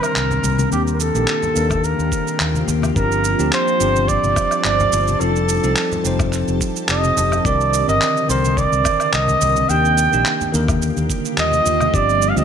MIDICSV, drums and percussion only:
0, 0, Header, 1, 2, 480
1, 0, Start_track
1, 0, Tempo, 560748
1, 618, Time_signature, 4, 2, 24, 8
1, 10651, End_track
2, 0, Start_track
2, 0, Title_t, "Drums"
2, 26, Note_on_c, 9, 77, 52
2, 30, Note_on_c, 9, 82, 30
2, 112, Note_off_c, 9, 77, 0
2, 116, Note_off_c, 9, 82, 0
2, 136, Note_on_c, 9, 39, 97
2, 141, Note_on_c, 9, 82, 40
2, 222, Note_off_c, 9, 39, 0
2, 226, Note_off_c, 9, 82, 0
2, 258, Note_on_c, 9, 63, 60
2, 264, Note_on_c, 9, 64, 90
2, 268, Note_on_c, 9, 82, 21
2, 343, Note_off_c, 9, 63, 0
2, 349, Note_off_c, 9, 64, 0
2, 353, Note_off_c, 9, 82, 0
2, 370, Note_on_c, 9, 64, 80
2, 377, Note_on_c, 9, 82, 73
2, 455, Note_off_c, 9, 64, 0
2, 462, Note_off_c, 9, 82, 0
2, 499, Note_on_c, 9, 63, 91
2, 504, Note_on_c, 9, 82, 31
2, 585, Note_off_c, 9, 63, 0
2, 590, Note_off_c, 9, 82, 0
2, 617, Note_on_c, 9, 82, 45
2, 703, Note_off_c, 9, 82, 0
2, 747, Note_on_c, 9, 82, 19
2, 833, Note_off_c, 9, 82, 0
2, 857, Note_on_c, 9, 82, 73
2, 943, Note_off_c, 9, 82, 0
2, 986, Note_on_c, 9, 82, 35
2, 1071, Note_off_c, 9, 82, 0
2, 1091, Note_on_c, 9, 39, 96
2, 1095, Note_on_c, 9, 82, 42
2, 1177, Note_off_c, 9, 39, 0
2, 1181, Note_off_c, 9, 82, 0
2, 1221, Note_on_c, 9, 82, 21
2, 1225, Note_on_c, 9, 64, 89
2, 1307, Note_off_c, 9, 82, 0
2, 1311, Note_off_c, 9, 64, 0
2, 1335, Note_on_c, 9, 82, 70
2, 1421, Note_off_c, 9, 82, 0
2, 1455, Note_on_c, 9, 64, 88
2, 1460, Note_on_c, 9, 77, 56
2, 1462, Note_on_c, 9, 36, 107
2, 1464, Note_on_c, 9, 82, 33
2, 1465, Note_on_c, 9, 63, 58
2, 1540, Note_off_c, 9, 64, 0
2, 1546, Note_off_c, 9, 77, 0
2, 1548, Note_off_c, 9, 36, 0
2, 1550, Note_off_c, 9, 82, 0
2, 1551, Note_off_c, 9, 63, 0
2, 1575, Note_on_c, 9, 82, 44
2, 1660, Note_off_c, 9, 82, 0
2, 1707, Note_on_c, 9, 82, 22
2, 1793, Note_off_c, 9, 82, 0
2, 1814, Note_on_c, 9, 36, 56
2, 1817, Note_on_c, 9, 82, 71
2, 1900, Note_off_c, 9, 36, 0
2, 1903, Note_off_c, 9, 82, 0
2, 1948, Note_on_c, 9, 82, 30
2, 2033, Note_off_c, 9, 82, 0
2, 2052, Note_on_c, 9, 39, 100
2, 2057, Note_on_c, 9, 82, 43
2, 2138, Note_off_c, 9, 39, 0
2, 2142, Note_off_c, 9, 82, 0
2, 2179, Note_on_c, 9, 63, 66
2, 2186, Note_on_c, 9, 82, 22
2, 2265, Note_off_c, 9, 63, 0
2, 2272, Note_off_c, 9, 82, 0
2, 2292, Note_on_c, 9, 64, 90
2, 2297, Note_on_c, 9, 82, 75
2, 2377, Note_off_c, 9, 64, 0
2, 2383, Note_off_c, 9, 82, 0
2, 2414, Note_on_c, 9, 63, 95
2, 2425, Note_on_c, 9, 77, 54
2, 2429, Note_on_c, 9, 82, 31
2, 2500, Note_off_c, 9, 63, 0
2, 2510, Note_off_c, 9, 77, 0
2, 2515, Note_off_c, 9, 82, 0
2, 2535, Note_on_c, 9, 36, 112
2, 2539, Note_on_c, 9, 82, 44
2, 2620, Note_off_c, 9, 36, 0
2, 2624, Note_off_c, 9, 82, 0
2, 2668, Note_on_c, 9, 82, 21
2, 2753, Note_off_c, 9, 82, 0
2, 2777, Note_on_c, 9, 82, 74
2, 2863, Note_off_c, 9, 82, 0
2, 2906, Note_on_c, 9, 82, 34
2, 2992, Note_off_c, 9, 82, 0
2, 3016, Note_on_c, 9, 39, 94
2, 3020, Note_on_c, 9, 82, 40
2, 3101, Note_off_c, 9, 39, 0
2, 3106, Note_off_c, 9, 82, 0
2, 3148, Note_on_c, 9, 82, 22
2, 3234, Note_off_c, 9, 82, 0
2, 3258, Note_on_c, 9, 82, 76
2, 3344, Note_off_c, 9, 82, 0
2, 3387, Note_on_c, 9, 63, 50
2, 3390, Note_on_c, 9, 82, 32
2, 3473, Note_off_c, 9, 63, 0
2, 3476, Note_off_c, 9, 82, 0
2, 3496, Note_on_c, 9, 36, 58
2, 3501, Note_on_c, 9, 82, 42
2, 3581, Note_off_c, 9, 36, 0
2, 3586, Note_off_c, 9, 82, 0
2, 3627, Note_on_c, 9, 63, 57
2, 3627, Note_on_c, 9, 82, 22
2, 3712, Note_off_c, 9, 63, 0
2, 3713, Note_off_c, 9, 82, 0
2, 3735, Note_on_c, 9, 77, 68
2, 3736, Note_on_c, 9, 36, 96
2, 3739, Note_on_c, 9, 82, 73
2, 3742, Note_on_c, 9, 64, 66
2, 3820, Note_off_c, 9, 77, 0
2, 3821, Note_off_c, 9, 36, 0
2, 3825, Note_off_c, 9, 82, 0
2, 3828, Note_off_c, 9, 64, 0
2, 3861, Note_on_c, 9, 77, 49
2, 3865, Note_on_c, 9, 82, 32
2, 3946, Note_off_c, 9, 77, 0
2, 3951, Note_off_c, 9, 82, 0
2, 3974, Note_on_c, 9, 39, 92
2, 3979, Note_on_c, 9, 82, 42
2, 4060, Note_off_c, 9, 39, 0
2, 4064, Note_off_c, 9, 82, 0
2, 4106, Note_on_c, 9, 82, 23
2, 4112, Note_on_c, 9, 63, 58
2, 4114, Note_on_c, 9, 64, 102
2, 4192, Note_off_c, 9, 82, 0
2, 4198, Note_off_c, 9, 63, 0
2, 4200, Note_off_c, 9, 64, 0
2, 4217, Note_on_c, 9, 82, 77
2, 4220, Note_on_c, 9, 64, 95
2, 4302, Note_off_c, 9, 82, 0
2, 4306, Note_off_c, 9, 64, 0
2, 4345, Note_on_c, 9, 82, 33
2, 4353, Note_on_c, 9, 63, 83
2, 4431, Note_off_c, 9, 82, 0
2, 4439, Note_off_c, 9, 63, 0
2, 4459, Note_on_c, 9, 82, 44
2, 4544, Note_off_c, 9, 82, 0
2, 4587, Note_on_c, 9, 82, 22
2, 4673, Note_off_c, 9, 82, 0
2, 4698, Note_on_c, 9, 82, 73
2, 4784, Note_off_c, 9, 82, 0
2, 4825, Note_on_c, 9, 82, 33
2, 4911, Note_off_c, 9, 82, 0
2, 4931, Note_on_c, 9, 39, 92
2, 4936, Note_on_c, 9, 82, 44
2, 5017, Note_off_c, 9, 39, 0
2, 5021, Note_off_c, 9, 82, 0
2, 5066, Note_on_c, 9, 82, 20
2, 5070, Note_on_c, 9, 64, 85
2, 5152, Note_off_c, 9, 82, 0
2, 5155, Note_off_c, 9, 64, 0
2, 5179, Note_on_c, 9, 82, 73
2, 5264, Note_off_c, 9, 82, 0
2, 5302, Note_on_c, 9, 64, 78
2, 5302, Note_on_c, 9, 77, 53
2, 5304, Note_on_c, 9, 63, 54
2, 5305, Note_on_c, 9, 36, 105
2, 5306, Note_on_c, 9, 82, 32
2, 5387, Note_off_c, 9, 64, 0
2, 5388, Note_off_c, 9, 77, 0
2, 5390, Note_off_c, 9, 36, 0
2, 5390, Note_off_c, 9, 63, 0
2, 5392, Note_off_c, 9, 82, 0
2, 5414, Note_on_c, 9, 39, 28
2, 5418, Note_on_c, 9, 82, 45
2, 5499, Note_off_c, 9, 39, 0
2, 5503, Note_off_c, 9, 82, 0
2, 5546, Note_on_c, 9, 82, 22
2, 5632, Note_off_c, 9, 82, 0
2, 5657, Note_on_c, 9, 36, 54
2, 5660, Note_on_c, 9, 82, 73
2, 5743, Note_off_c, 9, 36, 0
2, 5745, Note_off_c, 9, 82, 0
2, 5789, Note_on_c, 9, 82, 32
2, 5874, Note_off_c, 9, 82, 0
2, 5893, Note_on_c, 9, 39, 94
2, 5897, Note_on_c, 9, 82, 42
2, 5979, Note_off_c, 9, 39, 0
2, 5983, Note_off_c, 9, 82, 0
2, 6025, Note_on_c, 9, 82, 23
2, 6032, Note_on_c, 9, 63, 63
2, 6110, Note_off_c, 9, 82, 0
2, 6118, Note_off_c, 9, 63, 0
2, 6141, Note_on_c, 9, 64, 86
2, 6141, Note_on_c, 9, 82, 81
2, 6226, Note_off_c, 9, 64, 0
2, 6227, Note_off_c, 9, 82, 0
2, 6262, Note_on_c, 9, 63, 85
2, 6266, Note_on_c, 9, 77, 54
2, 6271, Note_on_c, 9, 82, 33
2, 6348, Note_off_c, 9, 63, 0
2, 6352, Note_off_c, 9, 77, 0
2, 6356, Note_off_c, 9, 82, 0
2, 6377, Note_on_c, 9, 36, 110
2, 6383, Note_on_c, 9, 82, 42
2, 6463, Note_off_c, 9, 36, 0
2, 6468, Note_off_c, 9, 82, 0
2, 6511, Note_on_c, 9, 82, 20
2, 6597, Note_off_c, 9, 82, 0
2, 6623, Note_on_c, 9, 82, 72
2, 6708, Note_off_c, 9, 82, 0
2, 6754, Note_on_c, 9, 82, 32
2, 6839, Note_off_c, 9, 82, 0
2, 6861, Note_on_c, 9, 39, 85
2, 6865, Note_on_c, 9, 82, 41
2, 6947, Note_off_c, 9, 39, 0
2, 6951, Note_off_c, 9, 82, 0
2, 6993, Note_on_c, 9, 82, 20
2, 7079, Note_off_c, 9, 82, 0
2, 7103, Note_on_c, 9, 82, 70
2, 7189, Note_off_c, 9, 82, 0
2, 7220, Note_on_c, 9, 63, 59
2, 7232, Note_on_c, 9, 82, 33
2, 7306, Note_off_c, 9, 63, 0
2, 7317, Note_off_c, 9, 82, 0
2, 7337, Note_on_c, 9, 36, 55
2, 7343, Note_on_c, 9, 82, 42
2, 7422, Note_off_c, 9, 36, 0
2, 7429, Note_off_c, 9, 82, 0
2, 7464, Note_on_c, 9, 63, 55
2, 7470, Note_on_c, 9, 82, 21
2, 7549, Note_off_c, 9, 63, 0
2, 7555, Note_off_c, 9, 82, 0
2, 7569, Note_on_c, 9, 64, 68
2, 7575, Note_on_c, 9, 77, 75
2, 7576, Note_on_c, 9, 36, 94
2, 7580, Note_on_c, 9, 82, 68
2, 7654, Note_off_c, 9, 64, 0
2, 7661, Note_off_c, 9, 77, 0
2, 7662, Note_off_c, 9, 36, 0
2, 7665, Note_off_c, 9, 82, 0
2, 7703, Note_on_c, 9, 77, 56
2, 7707, Note_on_c, 9, 82, 31
2, 7789, Note_off_c, 9, 77, 0
2, 7793, Note_off_c, 9, 82, 0
2, 7817, Note_on_c, 9, 39, 88
2, 7821, Note_on_c, 9, 82, 41
2, 7902, Note_off_c, 9, 39, 0
2, 7906, Note_off_c, 9, 82, 0
2, 7942, Note_on_c, 9, 64, 75
2, 7944, Note_on_c, 9, 63, 69
2, 7949, Note_on_c, 9, 82, 21
2, 8027, Note_off_c, 9, 64, 0
2, 8029, Note_off_c, 9, 63, 0
2, 8035, Note_off_c, 9, 82, 0
2, 8058, Note_on_c, 9, 82, 76
2, 8062, Note_on_c, 9, 64, 76
2, 8144, Note_off_c, 9, 82, 0
2, 8148, Note_off_c, 9, 64, 0
2, 8181, Note_on_c, 9, 63, 85
2, 8186, Note_on_c, 9, 82, 31
2, 8267, Note_off_c, 9, 63, 0
2, 8271, Note_off_c, 9, 82, 0
2, 8301, Note_on_c, 9, 82, 42
2, 8386, Note_off_c, 9, 82, 0
2, 8432, Note_on_c, 9, 82, 19
2, 8517, Note_off_c, 9, 82, 0
2, 8541, Note_on_c, 9, 82, 70
2, 8627, Note_off_c, 9, 82, 0
2, 8671, Note_on_c, 9, 82, 31
2, 8757, Note_off_c, 9, 82, 0
2, 8779, Note_on_c, 9, 39, 91
2, 8783, Note_on_c, 9, 82, 41
2, 8864, Note_off_c, 9, 39, 0
2, 8869, Note_off_c, 9, 82, 0
2, 8910, Note_on_c, 9, 82, 20
2, 8915, Note_on_c, 9, 64, 78
2, 8996, Note_off_c, 9, 82, 0
2, 9001, Note_off_c, 9, 64, 0
2, 9024, Note_on_c, 9, 82, 70
2, 9110, Note_off_c, 9, 82, 0
2, 9145, Note_on_c, 9, 36, 96
2, 9146, Note_on_c, 9, 77, 61
2, 9151, Note_on_c, 9, 82, 31
2, 9153, Note_on_c, 9, 63, 51
2, 9153, Note_on_c, 9, 64, 78
2, 9231, Note_off_c, 9, 36, 0
2, 9232, Note_off_c, 9, 77, 0
2, 9236, Note_off_c, 9, 82, 0
2, 9238, Note_off_c, 9, 64, 0
2, 9239, Note_off_c, 9, 63, 0
2, 9263, Note_on_c, 9, 82, 43
2, 9348, Note_off_c, 9, 82, 0
2, 9390, Note_on_c, 9, 82, 20
2, 9475, Note_off_c, 9, 82, 0
2, 9498, Note_on_c, 9, 36, 55
2, 9501, Note_on_c, 9, 82, 68
2, 9584, Note_off_c, 9, 36, 0
2, 9587, Note_off_c, 9, 82, 0
2, 9632, Note_on_c, 9, 82, 31
2, 9717, Note_off_c, 9, 82, 0
2, 9738, Note_on_c, 9, 39, 90
2, 9742, Note_on_c, 9, 82, 39
2, 9824, Note_off_c, 9, 39, 0
2, 9828, Note_off_c, 9, 82, 0
2, 9859, Note_on_c, 9, 63, 66
2, 9870, Note_on_c, 9, 82, 21
2, 9944, Note_off_c, 9, 63, 0
2, 9956, Note_off_c, 9, 82, 0
2, 9980, Note_on_c, 9, 82, 77
2, 9982, Note_on_c, 9, 64, 75
2, 10066, Note_off_c, 9, 82, 0
2, 10067, Note_off_c, 9, 64, 0
2, 10105, Note_on_c, 9, 77, 59
2, 10109, Note_on_c, 9, 82, 31
2, 10113, Note_on_c, 9, 63, 89
2, 10190, Note_off_c, 9, 77, 0
2, 10195, Note_off_c, 9, 82, 0
2, 10199, Note_off_c, 9, 63, 0
2, 10218, Note_on_c, 9, 36, 109
2, 10224, Note_on_c, 9, 82, 41
2, 10303, Note_off_c, 9, 36, 0
2, 10310, Note_off_c, 9, 82, 0
2, 10351, Note_on_c, 9, 82, 19
2, 10437, Note_off_c, 9, 82, 0
2, 10461, Note_on_c, 9, 82, 70
2, 10546, Note_off_c, 9, 82, 0
2, 10589, Note_on_c, 9, 82, 30
2, 10651, Note_off_c, 9, 82, 0
2, 10651, End_track
0, 0, End_of_file